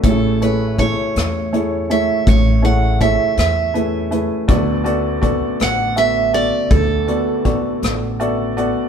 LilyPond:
<<
  \new Staff \with { instrumentName = "Steel-string acoustic guitar" } { \time 6/8 \key a \major \tempo 4. = 54 a'8 b'8 cis''4. e''8 | cis''8 fis''8 e''8 e''4 r8 | r4. fis''8 e''8 d''8 | a'2~ a'8 r8 | }
  \new Staff \with { instrumentName = "Felt piano" } { \time 6/8 \key a \major <a e' gis' cis''>8 <a e' gis' cis''>8 <a e' gis' cis''>8. r16 <a e' gis' cis''>8 <a e' gis' cis''>8~ | <a e' gis' cis''>16 r16 <a e' gis' cis''>8 <a e' gis' cis''>8. r16 <a e' gis' b'>8 <a e' gis' b'>8 | <b fis' a' d''>8 <b fis' a' d''>8 <b fis' a' d''>8. r16 <b fis' a' e''>8 <b fis' a' d''>8~ | <b fis' a' d''>16 r16 <b fis' a' d''>8 <b fis' a' d''>8. r16 <b fis' a' d'' e''>8 <b fis' a' d'' fis''>8 | }
  \new Staff \with { instrumentName = "Felt piano" } { \clef bass \time 6/8 \key a \major <a,, a,>2. | <a,, a,>2. | <d, d>2. | <d, d>2. | }
  \new Staff \with { instrumentName = "Upright bass" } { \clef bass \time 6/8 \key a \major a,,4. e,4. | a,,4. e,4. | d,4. a,,4. | d,4. a,,4. | }
  \new DrumStaff \with { instrumentName = "Drums" } \drummode { \time 6/8 <hh bd>8 hh8 <hh bd>8 <hh ss>8 hh8 hh8 | <hh bd>8 hh8 <hh bd>8 <hh ss>8 hh8 hh8 | <hh bd>8 hh8 <hh bd>8 <hh ss>8 hh8 hh8 | <hh bd>8 hh8 <hh bd>8 <hh ss>8 hh8 hh8 | }
>>